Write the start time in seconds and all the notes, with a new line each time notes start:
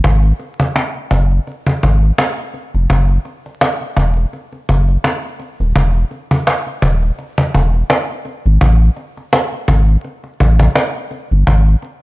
0.04 G#1, cajon bass
0.23 cajon slap
0.40 cajon slap
0.60 cajon bass
0.76 cajon slap
0.95 cajon slap
1.11 F#1, cajon bass
1.31 cajon slap
1.47 cajon slap
1.67 cajon bass
1.83 G#1, cajon bass
2.03 cajon slap
2.18 cajon slap
2.38 cajon slap
2.54 cajon slap
2.74 F1, cajon slap
2.90 F#1, cajon bass
3.09 cajon slap
3.25 cajon slap
3.46 cajon slap
3.61 cajon slap
3.81 cajon slap
3.97 E1, cajon bass
4.17 cajon slap
4.33 cajon slap
4.52 cajon slap
4.69 F#1, cajon bass
4.89 cajon slap
5.04 cajon slap
5.24 cajon slap
5.40 cajon slap
5.60 D#1, cajon slap
5.76 E1, cajon bass
5.95 cajon slap
6.11 cajon slap
6.31 cajon bass
6.47 cajon slap
6.67 cajon slap
6.82 D#1, cajon bass
7.03 cajon slap
7.19 cajon slap
7.38 cajon bass
7.54 E1, cajon bass
7.74 cajon slap
7.90 cajon slap
8.09 cajon slap
8.25 cajon slap
8.46 G#1, cajon slap
8.61 A1, cajon bass
8.80 cajon slap
8.97 cajon slap
9.17 cajon slap
9.33 cajon slap
9.52 cajon slap
9.68 G#1, cajon bass
9.88 cajon slap
10.05 cajon slap
10.24 cajon slap
10.40 A1, cajon bass
10.60 cajon bass
10.76 cajon slap
10.95 cajon slap
11.11 cajon slap
11.31 G1, cajon slap
11.47 G#1, cajon bass
11.66 cajon slap
11.82 cajon slap